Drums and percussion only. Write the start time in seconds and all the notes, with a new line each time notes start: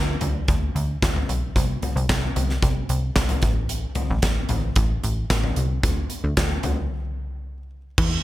0.21 closed hi-hat, floor tom
0.48 kick, closed hi-hat
0.76 closed hi-hat
1.02 kick, snare, clap, closed hi-hat
1.16 floor tom
1.29 closed hi-hat
1.56 kick, closed hi-hat
1.82 closed hi-hat, floor tom
1.97 closed hi-hat
2.09 kick, snare, clap, closed hi-hat
2.36 closed hi-hat, floor tom
2.49 snare
2.62 kick, closed hi-hat
2.89 closed hi-hat
3.16 kick, snare, clap, closed hi-hat
3.29 closed hi-hat, floor tom
3.42 kick, closed hi-hat
3.69 closed hi-hat
3.95 closed hi-hat, floor tom
4.22 kick, snare, clap, closed hi-hat
4.49 closed hi-hat, floor tom
4.76 kick, closed hi-hat
5.04 closed hi-hat
5.30 kick, snare, clap, closed hi-hat
5.44 floor tom
5.56 closed hi-hat
5.83 kick, closed hi-hat
6.10 closed hi-hat
6.37 kick, snare, clap, closed hi-hat
6.63 closed hi-hat, floor tom
7.98 kick, crash